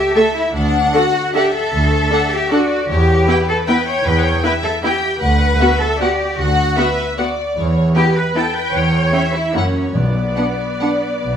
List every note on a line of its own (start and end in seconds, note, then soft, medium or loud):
0.00 0.14 G4 medium
0.00 0.15 E5 medium
0.15 0.24 A3 medium
0.15 0.35 A4 medium
0.15 0.23 A4 medium
0.15 0.24 E5 soft
0.15 0.54 E5 medium
0.34 0.54 E4 medium
0.54 0.87 D2 medium
0.54 0.93 D4 medium
0.54 1.33 F#5 medium
0.94 1.02 D4 medium
0.94 1.34 F#4 medium
0.94 1.02 A4 medium
0.94 1.04 F#5 soft
1.34 1.42 D4 medium
1.34 1.53 G4 medium
1.34 1.42 A4 medium
1.34 2.49 E5 medium
1.34 1.45 F#5 soft
1.54 2.29 A4 medium
1.73 2.04 D2 medium
2.11 2.19 D4 medium
2.11 2.19 A4 medium
2.11 2.21 F#5 soft
2.31 2.51 G4 medium
2.51 2.60 D4 medium
2.51 2.89 F#4 medium
2.51 2.59 A4 soft
2.51 2.89 D5 medium
2.51 2.60 F#5 soft
2.89 3.21 E2 medium
2.89 3.46 G4 medium
2.89 3.27 C#5 medium
3.27 3.35 B3 medium
3.27 3.35 E4 medium
3.27 3.68 B4 medium
3.27 3.36 G5 medium
3.48 3.56 A4 medium
3.67 3.76 B3 medium
3.67 3.75 E4 medium
3.67 3.87 B4 medium
3.67 4.44 G5 medium
3.67 3.76 G5 medium
3.87 4.05 C#5 medium
4.05 4.37 E2 medium
4.05 4.24 B4 medium
4.24 4.44 C#5 medium
4.43 4.51 B3 medium
4.43 4.51 E4 medium
4.43 4.52 B4 medium
4.43 4.84 E5 medium
4.43 4.52 G5 soft
4.64 4.72 A4 medium
4.83 4.92 B3 medium
4.83 4.92 E4 medium
4.83 5.21 G4 medium
4.83 5.21 G5 medium
4.83 4.92 G5 medium
5.21 5.54 D2 medium
5.21 5.79 B4 medium
5.21 5.60 F#5 medium
5.60 5.69 B3 medium
5.60 5.69 F#4 medium
5.60 6.01 E5 medium
5.60 5.69 F#5 soft
5.81 6.01 A4 medium
6.01 6.09 B3 medium
6.01 6.09 F#4 medium
6.01 6.38 G4 medium
6.01 6.38 D5 medium
6.01 6.09 F#5 medium
6.38 6.71 D2 medium
6.38 6.77 F#4 medium
6.38 6.76 F#5 medium
6.77 6.86 B3 medium
6.77 6.85 F#4 medium
6.77 6.98 B4 medium
6.77 7.18 E5 medium
6.77 6.86 F#5 soft
7.18 7.26 B3 soft
7.18 7.26 F#4 medium
7.18 7.55 D5 medium
7.18 7.27 F#5 soft
7.57 7.88 E2 medium
7.57 7.96 C#5 medium
7.95 8.03 B3 soft
7.95 8.03 E4 medium
7.95 8.14 G4 medium
7.95 8.36 B4 medium
7.95 8.03 G5 soft
8.15 8.36 B4 medium
8.35 8.43 B3 soft
8.35 8.44 E4 soft
8.35 8.55 A4 medium
8.35 8.44 G5 soft
8.35 9.14 G5 medium
8.56 8.74 B4 medium
8.74 9.06 E2 medium
8.74 9.34 C#5 medium
9.12 9.21 C#4 soft
9.12 9.20 E4 soft
9.12 9.54 E5 medium
9.12 9.21 G5 soft
9.33 9.54 E4 medium
9.54 9.88 F#2 medium
9.54 9.62 A#3 soft
9.54 9.95 C#4 medium
9.54 9.62 E4 soft
9.54 9.95 C#5 soft
9.54 9.63 F#5 soft
9.94 10.30 B1 medium
9.94 10.55 B2 medium
9.94 11.37 B3 medium
9.94 11.37 D5 medium
10.37 10.45 B3 soft
10.37 10.45 D4 soft
10.37 10.45 F#5 soft
10.80 10.89 B3 soft
10.80 10.90 D4 soft
10.80 10.88 F#5 soft
11.22 11.37 B1 medium